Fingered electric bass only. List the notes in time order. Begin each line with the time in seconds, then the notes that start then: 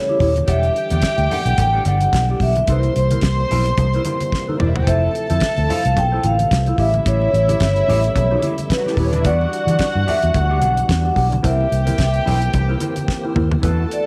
0.20 D#1
0.48 E1
0.91 E2
1.18 D2
1.45 B1
1.58 A1
1.86 G1
2.13 B1
2.40 B1
2.68 C2
2.96 C2
3.23 C2
3.51 B1
3.78 C2
4.61 E1
4.87 F1
5.31 F2
5.58 D2
5.85 C2
5.97 B1
6.24 A1
6.51 C2
6.78 A1
7.06 A1
7.33 A1
7.61 G1
7.88 A1
8.16 B1
8.97 D#1
9.25 E2
9.67 E3
9.95 G2
10.23 E2
10.35 D2
10.62 B1
10.89 E2
11.17 B1
11.44 C2
11.72 C2
11.99 C2
12.27 B1
12.54 C2
13.36 D#2
13.63 E2